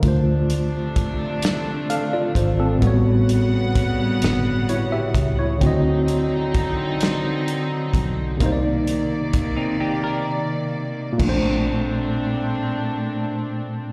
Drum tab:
CC |------|------|------|------|
HH |xxxxxx|xxxxxx|xxxxxx|xxx---|
SD |---o--|---o--|---o--|------|
BD |o-o--o|o-o--o|o-o--o|o-o---|

CC |x-----|
HH |------|
SD |------|
BD |o-----|